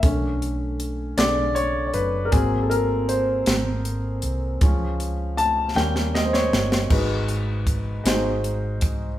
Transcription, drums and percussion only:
0.03 kick loud
0.03 closed hi-hat medium
0.42 closed hi-hat soft
0.80 closed hi-hat medium
1.18 snare loud
1.18 closed hi-hat medium
1.56 closed hi-hat soft
1.94 closed hi-hat soft
2.32 kick loud
2.32 closed hi-hat medium
2.71 closed hi-hat soft
3.09 closed hi-hat medium
3.46 snare loud
3.46 closed hi-hat loud
3.85 closed hi-hat soft
4.22 closed hi-hat soft
4.61 kick loud
4.61 closed hi-hat medium
5.00 closed hi-hat soft
5.38 closed hi-hat medium
5.77 snare medium
5.96 snare medium
6.15 snare medium
6.34 snare medium
6.53 snare medium
6.72 snare medium
6.90 kick loud
6.90 crash medium
7.28 closed hi-hat soft
7.67 kick medium
7.67 closed hi-hat medium
8.06 snare loud
8.06 closed hi-hat medium
8.44 closed hi-hat soft
8.81 kick medium
8.81 closed hi-hat medium

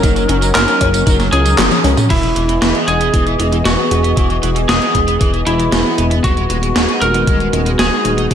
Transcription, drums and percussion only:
0.03 kick loud
0.03 closed hi-hat medium
0.03 tambourine medium
0.16 closed hi-hat soft
0.16 tambourine soft
0.29 closed hi-hat loud
0.42 closed hi-hat soft
0.42 tambourine medium
0.55 snare loud
0.55 clap loud
0.55 closed hi-hat medium
0.55 tambourine medium
0.68 closed hi-hat soft
0.68 tambourine soft
0.81 kick medium
0.81 closed hi-hat loud
0.94 closed hi-hat soft
0.94 tambourine medium
1.07 kick loud
1.07 closed hi-hat medium
1.07 tambourine medium
1.20 snare soft
1.20 closed hi-hat soft
1.20 tambourine soft
1.33 closed hi-hat medium
1.46 closed hi-hat soft
1.46 tambourine medium
1.58 snare loud
1.58 clap loud
1.58 closed hi-hat medium
1.58 high tom medium
1.58 tambourine medium
1.71 closed hi-hat soft
1.71 high tom medium
1.71 tambourine soft
1.84 open hi-hat medium
1.97 closed hi-hat soft
1.97 mid tom medium
1.97 tambourine medium
2.10 kick loud
2.10 closed hi-hat medium
2.10 crash medium
2.23 closed hi-hat soft
2.36 closed hi-hat medium
2.49 closed hi-hat medium
2.62 snare loud
2.62 closed hi-hat medium
2.75 closed hi-hat soft
2.88 closed hi-hat medium
3.01 closed hi-hat medium
3.14 kick loud
3.14 closed hi-hat medium
3.27 closed hi-hat soft
3.40 closed hi-hat medium
3.52 closed hi-hat medium
3.65 snare loud
3.65 closed hi-hat medium
3.91 closed hi-hat medium
4.04 closed hi-hat medium
4.17 kick loud
4.17 closed hi-hat medium
4.30 closed hi-hat soft
4.43 closed hi-hat medium
4.56 closed hi-hat medium
4.69 snare loud
4.69 closed hi-hat medium
4.82 closed hi-hat soft
4.95 kick medium
4.95 closed hi-hat medium
5.08 closed hi-hat medium
5.21 kick loud
5.21 closed hi-hat medium
5.34 closed hi-hat soft
5.47 closed hi-hat medium
5.60 closed hi-hat medium
5.72 snare loud
5.72 closed hi-hat medium
5.98 closed hi-hat medium
6.11 closed hi-hat medium
6.24 kick loud
6.24 closed hi-hat medium
6.37 closed hi-hat soft
6.50 closed hi-hat medium
6.63 closed hi-hat medium
6.76 snare loud
6.76 closed hi-hat medium
6.89 closed hi-hat soft
7.02 closed hi-hat medium
7.14 closed hi-hat medium
7.27 kick loud
7.27 closed hi-hat medium
7.40 closed hi-hat soft
7.53 closed hi-hat medium
7.66 closed hi-hat medium
7.79 snare loud
7.79 closed hi-hat medium
8.05 closed hi-hat medium
8.18 closed hi-hat medium
8.31 kick loud
8.31 closed hi-hat medium

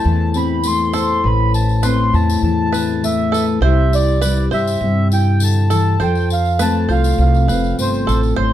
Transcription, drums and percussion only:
0.34 tambourine medium
0.63 tambourine medium
0.93 tambourine medium
1.54 tambourine medium
1.69 tambourine soft
1.83 tambourine medium
2.14 tambourine soft
2.29 tambourine medium
2.74 tambourine medium
3.04 tambourine medium
3.34 tambourine medium
3.93 tambourine medium
4.08 tambourine soft
4.22 tambourine medium
4.52 tambourine soft
4.67 tambourine medium
5.12 tambourine medium
5.40 tambourine medium
5.70 tambourine medium
6.00 tambourine soft
6.15 tambourine soft
6.30 tambourine medium
6.45 tambourine soft
6.59 tambourine medium
6.89 tambourine soft
7.04 tambourine medium
7.34 tambourine soft
7.49 tambourine medium
7.64 tambourine soft
7.79 tambourine medium
7.94 tambourine soft
8.09 tambourine medium
8.23 tambourine soft

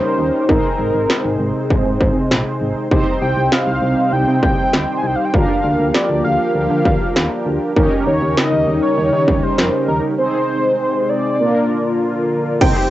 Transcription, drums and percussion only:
0.49 kick loud
1.10 snare loud
1.70 kick medium
2.01 kick medium
2.31 snare loud
2.91 kick loud
3.52 snare loud
4.43 kick medium
4.74 snare loud
5.34 kick loud
5.95 snare loud
6.85 kick medium
7.16 snare loud
7.76 kick loud
8.37 snare loud
9.28 kick medium
9.58 snare loud
12.61 kick loud
12.61 closed hi-hat medium
12.61 crash loud

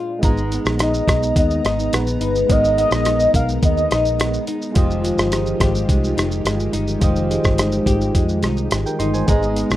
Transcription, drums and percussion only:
0.23 kick loud
0.23 closed hi-hat medium
0.23 shaker medium
0.37 shaker medium
0.52 closed hi-hat soft
0.52 shaker medium
0.65 cross-stick medium
0.65 shaker medium
0.79 cross-stick medium
0.79 closed hi-hat medium
0.79 shaker medium
0.94 shaker medium
1.08 kick loud
1.08 cross-stick loud
1.08 closed hi-hat medium
1.08 shaker medium
1.23 shaker medium
1.36 kick medium
1.36 closed hi-hat medium
1.36 shaker medium
1.51 shaker medium
1.65 cross-stick medium
1.65 closed hi-hat medium
1.65 shaker soft
1.79 shaker soft
1.93 cross-stick medium
1.93 closed hi-hat medium
1.93 shaker medium
2.07 shaker medium
2.21 closed hi-hat medium
2.21 shaker medium
2.35 shaker medium
2.50 kick loud
2.50 closed hi-hat medium
2.50 shaker medium
2.64 shaker medium
2.78 closed hi-hat medium
2.78 shaker soft
2.91 cross-stick medium
2.91 shaker medium
3.05 cross-stick medium
3.05 closed hi-hat medium
3.05 shaker medium
3.20 shaker medium
3.34 kick loud
3.34 closed hi-hat medium
3.34 shaker medium
3.49 shaker medium
3.63 kick medium
3.63 closed hi-hat medium
3.63 shaker medium
3.77 shaker medium
3.91 cross-stick medium
3.91 closed hi-hat soft
3.91 shaker medium
4.05 shaker medium
4.20 cross-stick loud
4.20 closed hi-hat medium
4.20 shaker medium
4.34 shaker soft
4.47 closed hi-hat medium
4.47 shaker medium
4.62 shaker medium
4.75 kick loud
4.75 closed hi-hat medium
4.75 shaker medium
4.91 shaker medium
5.05 closed hi-hat medium
5.05 shaker medium
5.18 cross-stick loud
5.18 shaker medium
5.32 cross-stick medium
5.32 closed hi-hat medium
5.32 shaker medium
5.46 shaker medium
5.60 kick medium
5.60 cross-stick medium
5.60 closed hi-hat medium
5.60 shaker medium
5.75 shaker medium
5.89 kick medium
5.89 closed hi-hat medium
5.89 shaker medium
6.04 shaker medium
6.18 cross-stick medium
6.18 closed hi-hat medium
6.18 shaker medium
6.31 shaker medium
6.46 cross-stick medium
6.46 closed hi-hat medium
6.46 shaker medium
6.60 shaker medium
6.73 closed hi-hat medium
6.73 shaker medium
6.88 shaker medium
7.01 kick loud
7.01 closed hi-hat medium
7.01 shaker medium
7.16 shaker medium
7.31 closed hi-hat medium
7.31 shaker medium
7.44 kick medium
7.44 cross-stick medium
7.44 shaker medium
7.58 cross-stick medium
7.58 closed hi-hat medium
7.58 shaker medium
7.72 shaker medium
7.86 kick medium
7.86 closed hi-hat medium
7.86 shaker medium
8.01 shaker medium
8.15 kick medium
8.15 closed hi-hat medium
8.15 shaker medium
8.29 shaker soft
8.43 cross-stick medium
8.43 closed hi-hat medium
8.43 shaker medium
8.57 shaker medium
8.71 cross-stick loud
8.71 closed hi-hat medium
8.71 shaker medium
8.86 shaker medium
9.00 closed hi-hat medium
9.00 shaker medium
9.14 shaker medium
9.28 kick loud
9.28 closed hi-hat medium
9.28 shaker medium
9.43 shaker medium
9.56 closed hi-hat medium
9.56 shaker medium
9.70 cross-stick medium
9.70 shaker medium

